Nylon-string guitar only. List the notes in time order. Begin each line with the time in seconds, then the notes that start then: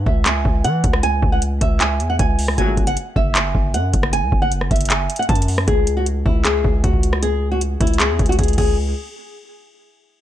0.06 E5
0.26 G#5
0.64 F#5
1.03 G#5
1.32 F#5
1.61 E5
1.80 G#5
2.10 F#5
2.19 G#5
2.58 G#5
2.87 F#5
3.16 E5
3.35 G#5
3.74 F#5
4.13 G#5
4.42 F#5
4.71 E5
4.90 G#5
5.19 F#5
5.29 A5
5.68 G#4
5.97 F#4
6.26 E4
6.45 G#4
6.84 F#4
7.23 G#4
7.52 F#4
7.81 E4
8.00 G#4
8.29 F#4
8.39 G#4
8.58 G#4